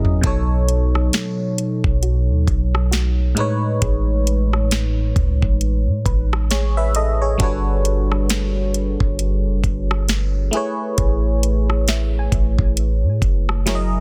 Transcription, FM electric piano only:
0, 0, Header, 1, 2, 480
1, 0, Start_track
1, 0, Tempo, 895522
1, 125, Time_signature, 4, 2, 24, 8
1, 7505, End_track
2, 0, Start_track
2, 0, Title_t, "FM electric piano"
2, 0, Program_c, 0, 5
2, 0, Control_c, 0, 64, 127
2, 0, Note_on_c, 0, 54, 75
2, 0, Note_on_c, 0, 61, 68
2, 0, Note_on_c, 0, 64, 67
2, 0, Note_on_c, 0, 68, 65
2, 0, Note_on_c, 0, 70, 67
2, 0, Note_on_c, 0, 75, 82
2, 114, Note_on_c, 0, 47, 76
2, 116, Note_off_c, 0, 54, 0
2, 122, Note_on_c, 0, 54, 67
2, 126, Note_off_c, 0, 61, 0
2, 127, Note_off_c, 0, 64, 0
2, 128, Note_on_c, 0, 63, 69
2, 129, Note_off_c, 0, 68, 0
2, 130, Note_off_c, 0, 70, 0
2, 132, Note_off_c, 0, 75, 0
2, 133, Control_c, 0, 64, 0
2, 136, Note_on_c, 0, 69, 68
2, 143, Note_on_c, 0, 73, 81
2, 238, Control_c, 0, 64, 127
2, 1778, Note_off_c, 0, 47, 0
2, 1783, Note_off_c, 0, 54, 0
2, 1785, Note_off_c, 0, 63, 0
2, 1789, Note_off_c, 0, 69, 0
2, 1793, Note_off_c, 0, 73, 0
2, 1794, Note_on_c, 0, 45, 78
2, 1801, Note_on_c, 0, 56, 68
2, 1809, Note_on_c, 0, 63, 72
2, 1811, Control_c, 0, 64, 0
2, 1817, Note_on_c, 0, 71, 72
2, 1824, Note_on_c, 0, 73, 85
2, 1898, Control_c, 0, 64, 127
2, 3470, Note_off_c, 0, 71, 0
2, 3473, Note_off_c, 0, 73, 0
2, 3489, Note_on_c, 0, 73, 68
2, 3494, Note_on_c, 0, 68, 57
2, 3620, Note_off_c, 0, 73, 0
2, 3622, Note_off_c, 0, 68, 0
2, 3630, Note_on_c, 0, 76, 76
2, 3633, Note_on_c, 0, 71, 60
2, 3698, Note_off_c, 0, 45, 0
2, 3702, Note_off_c, 0, 56, 0
2, 3706, Note_off_c, 0, 63, 0
2, 3723, Note_off_c, 0, 76, 0
2, 3725, Note_off_c, 0, 71, 0
2, 3730, Note_on_c, 0, 75, 76
2, 3733, Note_on_c, 0, 69, 63
2, 3860, Note_off_c, 0, 75, 0
2, 3862, Note_off_c, 0, 69, 0
2, 3868, Note_on_c, 0, 73, 70
2, 3871, Note_on_c, 0, 68, 55
2, 3954, Note_on_c, 0, 55, 73
2, 3960, Note_on_c, 0, 62, 68
2, 3965, Note_on_c, 0, 66, 70
2, 3972, Control_c, 0, 64, 0
2, 3972, Note_on_c, 0, 69, 70
2, 3977, Note_off_c, 0, 73, 0
2, 3978, Note_on_c, 0, 71, 68
2, 3984, Note_on_c, 0, 73, 83
2, 4064, Control_c, 0, 64, 127
2, 4096, Note_off_c, 0, 68, 0
2, 5618, Note_off_c, 0, 55, 0
2, 5621, Note_off_c, 0, 62, 0
2, 5624, Note_off_c, 0, 66, 0
2, 5627, Note_off_c, 0, 69, 0
2, 5630, Note_off_c, 0, 71, 0
2, 5633, Note_off_c, 0, 73, 0
2, 5634, Note_on_c, 0, 57, 75
2, 5642, Note_on_c, 0, 64, 69
2, 5649, Note_on_c, 0, 68, 73
2, 5653, Control_c, 0, 64, 0
2, 5656, Note_on_c, 0, 71, 70
2, 5664, Note_on_c, 0, 73, 85
2, 5736, Control_c, 0, 64, 127
2, 7299, Note_off_c, 0, 57, 0
2, 7302, Note_off_c, 0, 64, 0
2, 7306, Note_off_c, 0, 68, 0
2, 7309, Note_off_c, 0, 71, 0
2, 7313, Note_off_c, 0, 73, 0
2, 7321, Note_on_c, 0, 54, 78
2, 7324, Note_on_c, 0, 64, 68
2, 7328, Note_on_c, 0, 68, 65
2, 7331, Note_on_c, 0, 70, 67
2, 7332, Control_c, 0, 64, 0
2, 7336, Note_on_c, 0, 73, 69
2, 7370, Note_on_c, 0, 75, 82
2, 7371, Note_off_c, 0, 73, 0
2, 7411, Control_c, 0, 64, 127
2, 7505, Note_off_c, 0, 54, 0
2, 7505, Note_off_c, 0, 64, 0
2, 7505, Note_off_c, 0, 68, 0
2, 7505, Note_off_c, 0, 70, 0
2, 7505, Note_off_c, 0, 75, 0
2, 7505, End_track
0, 0, End_of_file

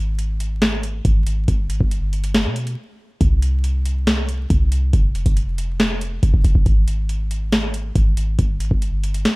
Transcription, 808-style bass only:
0, 0, Header, 1, 2, 480
1, 0, Start_track
1, 0, Tempo, 431655
1, 1647, Time_signature, 4, 2, 24, 8
1, 10406, End_track
2, 0, Start_track
2, 0, Title_t, "808-style bass"
2, 0, Program_c, 0, 38
2, 0, Note_on_c, 0, 32, 114
2, 1122, Note_off_c, 0, 32, 0
2, 1167, Note_on_c, 0, 32, 110
2, 1628, Note_off_c, 0, 32, 0
2, 1647, Note_on_c, 0, 31, 107
2, 1887, Note_on_c, 0, 32, 94
2, 1903, Note_off_c, 0, 31, 0
2, 2001, Note_off_c, 0, 32, 0
2, 2007, Note_on_c, 0, 31, 113
2, 2727, Note_on_c, 0, 47, 99
2, 2743, Note_off_c, 0, 31, 0
2, 3069, Note_off_c, 0, 47, 0
2, 3567, Note_on_c, 0, 36, 109
2, 4962, Note_off_c, 0, 36, 0
2, 5007, Note_on_c, 0, 36, 109
2, 5468, Note_off_c, 0, 36, 0
2, 5486, Note_on_c, 0, 29, 114
2, 5832, Note_off_c, 0, 29, 0
2, 5847, Note_on_c, 0, 29, 107
2, 6883, Note_off_c, 0, 29, 0
2, 6927, Note_on_c, 0, 29, 113
2, 7042, Note_off_c, 0, 29, 0
2, 7047, Note_on_c, 0, 29, 104
2, 7162, Note_off_c, 0, 29, 0
2, 7167, Note_on_c, 0, 29, 105
2, 7279, Note_off_c, 0, 29, 0
2, 7286, Note_on_c, 0, 29, 98
2, 7401, Note_off_c, 0, 29, 0
2, 7406, Note_on_c, 0, 32, 113
2, 8802, Note_off_c, 0, 32, 0
2, 8847, Note_on_c, 0, 32, 112
2, 9307, Note_off_c, 0, 32, 0
2, 9327, Note_on_c, 0, 31, 109
2, 9567, Note_on_c, 0, 32, 96
2, 9584, Note_off_c, 0, 31, 0
2, 9681, Note_off_c, 0, 32, 0
2, 9686, Note_on_c, 0, 31, 114
2, 10286, Note_off_c, 0, 31, 0
2, 10406, End_track
0, 0, End_of_file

